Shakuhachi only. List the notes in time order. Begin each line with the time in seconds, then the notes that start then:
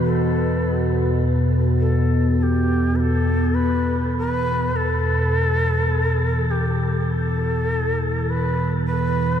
0.04 A4
1.80 A4
2.39 G4 A4
2.96 B4
3.00 A4
3.54 B4
4.18 A#4
4.30 B4
4.76 A4
6.51 G4
7.10 A4
8.29 B4
8.86 B4